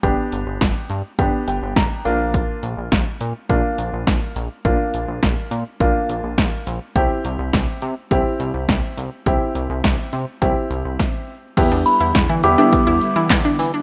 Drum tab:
CC |--------|--------|--------|--------|
HH |xxxxxxxx|xxxxxxxx|xxxxxxxx|xxxxxxxx|
CP |--------|--------|--------|--------|
SD |--o---o-|--o---o-|--o---o-|--o---o-|
BD |o-o-o-o-|o-o-o-o-|o-o-o-o-|o-o-o-o-|

CC |--------|x-------|
HH |xxxxxx--|xxxxxxxo|
CP |--------|------x-|
SD |--o---o-|--o---o-|
BD |o-o-o-o-|o-o-o-o-|